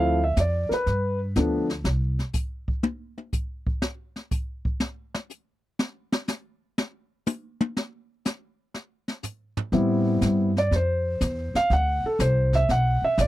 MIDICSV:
0, 0, Header, 1, 5, 480
1, 0, Start_track
1, 0, Tempo, 492611
1, 1804, Time_signature, 4, 2, 24, 8
1, 12934, End_track
2, 0, Start_track
2, 0, Title_t, "Grand piano"
2, 0, Program_c, 0, 0
2, 0, Note_on_c, 0, 53, 58
2, 0, Note_on_c, 0, 57, 55
2, 0, Note_on_c, 0, 60, 56
2, 0, Note_on_c, 0, 64, 61
2, 0, Note_on_c, 0, 77, 86
2, 180, Note_off_c, 0, 53, 0
2, 181, Note_off_c, 0, 57, 0
2, 183, Note_off_c, 0, 60, 0
2, 186, Note_off_c, 0, 64, 0
2, 217, Note_off_c, 0, 77, 0
2, 231, Note_on_c, 0, 76, 76
2, 369, Note_off_c, 0, 76, 0
2, 390, Note_on_c, 0, 74, 66
2, 674, Note_on_c, 0, 70, 53
2, 692, Note_off_c, 0, 70, 0
2, 697, Note_off_c, 0, 74, 0
2, 717, Note_on_c, 0, 71, 78
2, 1152, Note_off_c, 0, 71, 0
2, 1327, Note_on_c, 0, 53, 50
2, 1330, Note_on_c, 0, 59, 49
2, 1331, Note_on_c, 0, 57, 44
2, 1337, Note_on_c, 0, 62, 57
2, 1621, Note_off_c, 0, 53, 0
2, 1623, Note_off_c, 0, 59, 0
2, 1624, Note_off_c, 0, 57, 0
2, 1627, Note_off_c, 0, 62, 0
2, 9477, Note_on_c, 0, 55, 63
2, 9482, Note_on_c, 0, 59, 54
2, 9487, Note_on_c, 0, 60, 54
2, 9490, Note_on_c, 0, 64, 65
2, 10223, Note_off_c, 0, 55, 0
2, 10225, Note_off_c, 0, 59, 0
2, 10227, Note_off_c, 0, 60, 0
2, 10229, Note_off_c, 0, 64, 0
2, 10313, Note_on_c, 0, 74, 84
2, 10448, Note_off_c, 0, 74, 0
2, 10482, Note_on_c, 0, 72, 74
2, 11232, Note_off_c, 0, 72, 0
2, 11266, Note_on_c, 0, 77, 98
2, 11405, Note_off_c, 0, 77, 0
2, 11430, Note_on_c, 0, 78, 94
2, 11735, Note_off_c, 0, 78, 0
2, 11751, Note_on_c, 0, 69, 67
2, 11887, Note_off_c, 0, 69, 0
2, 11899, Note_on_c, 0, 72, 77
2, 12209, Note_off_c, 0, 72, 0
2, 12232, Note_on_c, 0, 76, 93
2, 12367, Note_off_c, 0, 76, 0
2, 12387, Note_on_c, 0, 78, 93
2, 12693, Note_off_c, 0, 78, 0
2, 12711, Note_on_c, 0, 76, 89
2, 12846, Note_off_c, 0, 76, 0
2, 12869, Note_on_c, 0, 74, 75
2, 12934, Note_off_c, 0, 74, 0
2, 12934, End_track
3, 0, Start_track
3, 0, Title_t, "Upright bass"
3, 0, Program_c, 1, 32
3, 0, Note_on_c, 1, 38, 82
3, 348, Note_off_c, 1, 38, 0
3, 357, Note_on_c, 1, 41, 80
3, 666, Note_off_c, 1, 41, 0
3, 842, Note_on_c, 1, 43, 78
3, 1308, Note_off_c, 1, 43, 0
3, 1325, Note_on_c, 1, 38, 88
3, 1790, Note_off_c, 1, 38, 0
3, 1796, Note_on_c, 1, 36, 76
3, 2119, Note_off_c, 1, 36, 0
3, 9472, Note_on_c, 1, 45, 83
3, 9942, Note_off_c, 1, 45, 0
3, 9952, Note_on_c, 1, 43, 83
3, 10422, Note_off_c, 1, 43, 0
3, 10438, Note_on_c, 1, 41, 78
3, 10905, Note_off_c, 1, 41, 0
3, 10921, Note_on_c, 1, 40, 92
3, 11227, Note_off_c, 1, 40, 0
3, 11402, Note_on_c, 1, 38, 88
3, 11707, Note_off_c, 1, 38, 0
3, 11878, Note_on_c, 1, 36, 83
3, 12344, Note_off_c, 1, 36, 0
3, 12363, Note_on_c, 1, 35, 77
3, 12667, Note_off_c, 1, 35, 0
3, 12840, Note_on_c, 1, 33, 101
3, 12934, Note_off_c, 1, 33, 0
3, 12934, End_track
4, 0, Start_track
4, 0, Title_t, "Muted upright bass strokes"
4, 685, Note_on_c, 9, 29, 36
4, 783, Note_off_c, 9, 29, 0
4, 11245, Note_on_c, 9, 29, 38
4, 11343, Note_off_c, 9, 29, 0
4, 11731, Note_on_c, 9, 29, 37
4, 11828, Note_off_c, 9, 29, 0
4, 12685, Note_on_c, 9, 29, 41
4, 12782, Note_off_c, 9, 29, 0
4, 12934, End_track
5, 0, Start_track
5, 0, Title_t, "Drums"
5, 354, Note_on_c, 9, 44, 47
5, 359, Note_on_c, 9, 38, 60
5, 361, Note_on_c, 9, 36, 26
5, 452, Note_off_c, 9, 44, 0
5, 457, Note_off_c, 9, 38, 0
5, 458, Note_off_c, 9, 36, 0
5, 695, Note_on_c, 9, 38, 36
5, 792, Note_off_c, 9, 38, 0
5, 844, Note_on_c, 9, 36, 22
5, 846, Note_on_c, 9, 25, 43
5, 846, Note_on_c, 9, 38, 42
5, 942, Note_off_c, 9, 36, 0
5, 943, Note_off_c, 9, 38, 0
5, 1321, Note_on_c, 9, 44, 47
5, 1324, Note_on_c, 9, 36, 19
5, 1326, Note_on_c, 9, 38, 56
5, 1419, Note_off_c, 9, 44, 0
5, 1421, Note_off_c, 9, 36, 0
5, 1424, Note_off_c, 9, 38, 0
5, 1653, Note_on_c, 9, 38, 39
5, 1750, Note_off_c, 9, 38, 0
5, 1801, Note_on_c, 9, 38, 86
5, 1898, Note_off_c, 9, 38, 0
5, 2133, Note_on_c, 9, 38, 33
5, 2194, Note_off_c, 9, 25, 0
5, 2231, Note_off_c, 9, 38, 0
5, 2275, Note_on_c, 9, 44, 52
5, 2281, Note_on_c, 9, 36, 72
5, 2372, Note_off_c, 9, 44, 0
5, 2378, Note_off_c, 9, 36, 0
5, 2611, Note_on_c, 9, 36, 69
5, 2708, Note_off_c, 9, 36, 0
5, 2759, Note_on_c, 9, 48, 91
5, 2857, Note_off_c, 9, 48, 0
5, 3095, Note_on_c, 9, 48, 34
5, 3192, Note_off_c, 9, 48, 0
5, 3242, Note_on_c, 9, 44, 49
5, 3243, Note_on_c, 9, 36, 70
5, 3340, Note_off_c, 9, 36, 0
5, 3340, Note_off_c, 9, 44, 0
5, 3572, Note_on_c, 9, 36, 82
5, 3669, Note_off_c, 9, 36, 0
5, 3721, Note_on_c, 9, 38, 94
5, 3819, Note_off_c, 9, 38, 0
5, 4052, Note_on_c, 9, 38, 42
5, 4149, Note_off_c, 9, 38, 0
5, 4202, Note_on_c, 9, 44, 51
5, 4203, Note_on_c, 9, 36, 74
5, 4299, Note_off_c, 9, 44, 0
5, 4300, Note_off_c, 9, 36, 0
5, 4532, Note_on_c, 9, 36, 76
5, 4629, Note_off_c, 9, 36, 0
5, 4678, Note_on_c, 9, 38, 93
5, 4776, Note_off_c, 9, 38, 0
5, 5013, Note_on_c, 9, 38, 91
5, 5111, Note_off_c, 9, 38, 0
5, 5162, Note_on_c, 9, 44, 52
5, 5259, Note_off_c, 9, 44, 0
5, 5643, Note_on_c, 9, 38, 88
5, 5741, Note_off_c, 9, 38, 0
5, 5967, Note_on_c, 9, 38, 89
5, 6065, Note_off_c, 9, 38, 0
5, 6116, Note_on_c, 9, 44, 56
5, 6121, Note_on_c, 9, 38, 89
5, 6213, Note_off_c, 9, 44, 0
5, 6218, Note_off_c, 9, 38, 0
5, 6606, Note_on_c, 9, 38, 98
5, 6704, Note_off_c, 9, 38, 0
5, 7077, Note_on_c, 9, 44, 51
5, 7082, Note_on_c, 9, 48, 92
5, 7175, Note_off_c, 9, 44, 0
5, 7180, Note_off_c, 9, 48, 0
5, 7411, Note_on_c, 9, 48, 98
5, 7509, Note_off_c, 9, 48, 0
5, 7567, Note_on_c, 9, 38, 95
5, 7665, Note_off_c, 9, 38, 0
5, 8041, Note_on_c, 9, 44, 54
5, 8046, Note_on_c, 9, 38, 86
5, 8139, Note_off_c, 9, 44, 0
5, 8144, Note_off_c, 9, 38, 0
5, 8520, Note_on_c, 9, 38, 49
5, 8618, Note_off_c, 9, 38, 0
5, 8847, Note_on_c, 9, 38, 48
5, 8945, Note_off_c, 9, 38, 0
5, 8994, Note_on_c, 9, 44, 54
5, 8999, Note_on_c, 9, 43, 42
5, 9092, Note_off_c, 9, 44, 0
5, 9096, Note_off_c, 9, 43, 0
5, 9325, Note_on_c, 9, 43, 100
5, 9423, Note_off_c, 9, 43, 0
5, 9474, Note_on_c, 9, 25, 46
5, 9474, Note_on_c, 9, 38, 44
5, 9477, Note_on_c, 9, 36, 24
5, 9571, Note_off_c, 9, 38, 0
5, 9574, Note_off_c, 9, 36, 0
5, 9953, Note_on_c, 9, 44, 62
5, 9957, Note_on_c, 9, 38, 62
5, 9958, Note_on_c, 9, 36, 18
5, 10050, Note_off_c, 9, 44, 0
5, 10055, Note_off_c, 9, 36, 0
5, 10055, Note_off_c, 9, 38, 0
5, 10296, Note_on_c, 9, 38, 38
5, 10393, Note_off_c, 9, 38, 0
5, 10441, Note_on_c, 9, 36, 22
5, 10447, Note_off_c, 9, 25, 0
5, 10447, Note_on_c, 9, 25, 44
5, 10447, Note_on_c, 9, 38, 48
5, 10539, Note_off_c, 9, 36, 0
5, 10545, Note_off_c, 9, 38, 0
5, 10921, Note_on_c, 9, 44, 55
5, 10923, Note_on_c, 9, 36, 19
5, 10925, Note_on_c, 9, 38, 63
5, 11018, Note_off_c, 9, 44, 0
5, 11020, Note_off_c, 9, 36, 0
5, 11023, Note_off_c, 9, 38, 0
5, 11256, Note_on_c, 9, 38, 46
5, 11353, Note_off_c, 9, 38, 0
5, 11410, Note_off_c, 9, 25, 0
5, 11410, Note_on_c, 9, 25, 49
5, 11410, Note_on_c, 9, 38, 44
5, 11507, Note_off_c, 9, 38, 0
5, 11882, Note_on_c, 9, 44, 53
5, 11884, Note_on_c, 9, 36, 24
5, 11887, Note_on_c, 9, 38, 65
5, 11980, Note_off_c, 9, 44, 0
5, 11981, Note_off_c, 9, 36, 0
5, 11985, Note_off_c, 9, 38, 0
5, 12208, Note_on_c, 9, 38, 38
5, 12212, Note_on_c, 9, 36, 52
5, 12305, Note_off_c, 9, 38, 0
5, 12309, Note_off_c, 9, 36, 0
5, 12365, Note_off_c, 9, 25, 0
5, 12365, Note_on_c, 9, 25, 55
5, 12365, Note_on_c, 9, 36, 23
5, 12365, Note_on_c, 9, 38, 47
5, 12462, Note_off_c, 9, 36, 0
5, 12463, Note_off_c, 9, 38, 0
5, 12843, Note_on_c, 9, 44, 61
5, 12844, Note_on_c, 9, 36, 25
5, 12848, Note_on_c, 9, 38, 62
5, 12934, Note_off_c, 9, 25, 0
5, 12934, Note_off_c, 9, 36, 0
5, 12934, Note_off_c, 9, 38, 0
5, 12934, Note_off_c, 9, 44, 0
5, 12934, End_track
0, 0, End_of_file